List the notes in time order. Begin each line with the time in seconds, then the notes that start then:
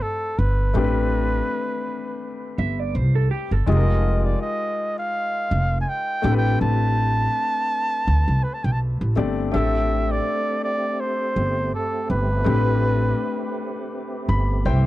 Already playing: A3 C4 D4 G4 A4
0.02 A4
0.39 G1 B4
0.74 A1 A3 C4 D4 G4 B4
0.84 B4
2.58 G1 E5
2.79 D5
2.95 C2 C5
3.15 A4
3.31 G4
3.51 G1 A4
3.66 F1 G#3 D#4 F4 G4 G#4 D#5
3.76 A#4
4.25 D5
4.42 D#5
4.99 F5
5.51 F1
5.81 G#5
5.89 G5
6.22 A1 A3 C4 D4 G4 A4
6.32 B4
6.37 G5
6.61 A1 A5
8.07 D2
8.28 C2
8.43 B4
8.54 A5
8.64 B1 G5
8.72 A5
9.01 A1
9.16 G1 A3 C4 D4 G4 D5
9.51 A1 A3 C4 D4 G4 A4 E5
10.12 D5
10.64 D5
11.00 C5
11.36 G1
11.74 A4
12.10 G1 B4
12.44 A1 A3 C4 D4 G4 B4
12.54 B4
14.29 G1 B5
14.65 C2 E4 C5 G5